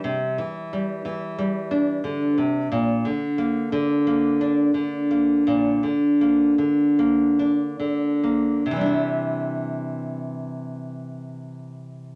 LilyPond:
\new Staff \with { instrumentName = "Nylon-string guitar" } { \clef bass \time 4/4 \key c \mixolydian \tempo 4 = 83 << { g4 g4 g8 d'4. | r4 bes4 bes8 d'4 bes8 | r4 bes4 bes8 d'4 bes8 | <e g d' e'>1 | } \\ { c8 e4 e4. d8 c8 | bes,8 d4 d4. d4 | bes,8 d4 d4. d4 | c1 | } >> }